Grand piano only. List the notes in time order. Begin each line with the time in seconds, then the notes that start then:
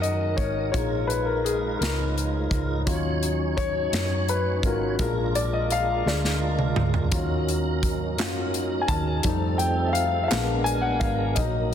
Already playing: F3 F#3 C#4 F#5
0.02 D#5
0.37 C#5
0.72 G#3 D#4 F4 C#5
1.07 B4
1.26 A#4
1.44 G#4
1.79 A#4
2.86 F#3 C#4 F4
3.57 C#5
4.29 B4
4.65 F#3 C#4 F4 A#4
5.00 G#3 D4 F4 A#4
5.35 D5
5.53 D#5
5.72 F5
6.06 G#3 D4 F4 D5
7.12 F#3 C#4 F4
8.18 F#3 C#4 F4
8.81 G#5
8.88 A5
9.24 G3 A3 D#4
9.58 G5
9.88 E5
9.93 F5
10.23 E5
10.28 G#3 B3 D4 F5
10.64 G#5
10.81 F#5
11.00 F5
11.35 F#3 A#3 D#4 D#5